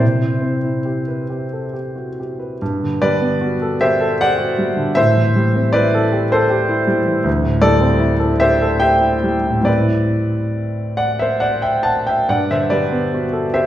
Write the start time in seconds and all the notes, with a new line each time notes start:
0.00 C3 C5
0.22 E4
0.41 C4
0.64 E4
0.85 G4
1.08 B4
1.30 G4
1.53 A4
1.73 G4
1.96 F#4
2.20 G4
2.39 B4
2.62 G2
2.83 D3
3.02 G3 B4 D5
3.21 B3
3.41 F#4
3.62 A4
3.81 G4 C5 E5
4.01 A4
4.21 G4 D5 F#5
4.38 F#4
4.58 G3
4.77 D3
4.95 A2 C5 E5
5.16 E3
5.36 G3
5.56 C4
5.73 E4 B4 D5
5.94 A4
6.13 G4
6.32 A4 C5
6.50 G4
6.69 E4
6.87 G3
7.06 E3
7.24 D2
7.42 A2
7.61 G3 A4 D5
7.81 C4
8.00 E4
8.19 A4
8.40 G4 C5 E5
8.62 A4
8.80 G4 E5 G5
9.01 E4
9.23 G3
9.46 A2
9.61 A2 G3 C4 E4
9.65 B4 D5
10.97 D5 F#5
11.19 C5 E5
11.40 D5 F#5
11.62 E5 G5
11.83 F#5 A5
12.07 E5 G5
12.29 G2 D5 F#5
12.51 D3 C5 E5
12.70 G3 B4 D5
12.92 B3
13.14 F#4
13.33 A4
13.54 G4 C5 E5